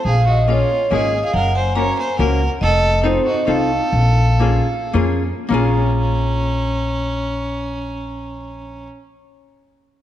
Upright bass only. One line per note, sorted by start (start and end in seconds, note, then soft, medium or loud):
0.05 0.61 A#1 medium
0.92 1.19 G#1 medium
1.34 1.89 F#1 medium
2.19 2.47 C#2 loud
2.61 3.17 F1 medium
3.48 3.77 C2 medium
3.92 4.58 A#1 loud
4.94 5.31 F2 medium
5.51 8.87 A#1 medium